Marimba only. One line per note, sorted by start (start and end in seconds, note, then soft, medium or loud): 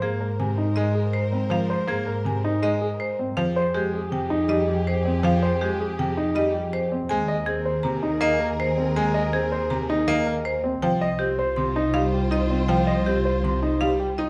0.02 0.26 G#4 medium
0.40 0.64 G#5 medium
0.76 1.01 D#5 medium
1.13 1.38 C5 medium
1.51 1.76 F5 medium
1.88 2.13 G#4 medium
2.26 2.50 G#5 medium
2.63 2.87 D#5 loud
3.00 3.24 C5 medium
3.37 3.62 F5 medium
3.74 3.99 G4 medium
4.12 4.36 G5 medium
4.49 4.74 D#5 loud
4.87 5.11 C5 medium
5.25 5.48 F5 loud
5.61 5.86 G4 medium
5.99 6.23 G5 medium
6.36 6.60 D#5 loud
6.73 6.97 C5 medium
7.09 7.34 G#5 loud
7.46 7.71 G#4 medium
7.83 8.09 A#5 medium
8.22 8.46 D#5 loud
8.60 8.84 C5 loud
8.96 9.21 G#5 medium
9.33 9.58 G#4 medium
9.70 9.95 A#5 medium
10.08 10.32 D#5 loud
10.45 10.70 C5 medium
10.82 11.07 G5 loud
11.19 11.44 G4 medium
11.56 11.81 C6 medium
11.94 12.19 F5 loud
12.32 12.56 D#5 medium
12.69 12.93 G5 loud
13.06 13.31 G4 medium
13.45 13.68 C6 medium
13.81 14.05 F5 loud
14.18 14.30 D#5 medium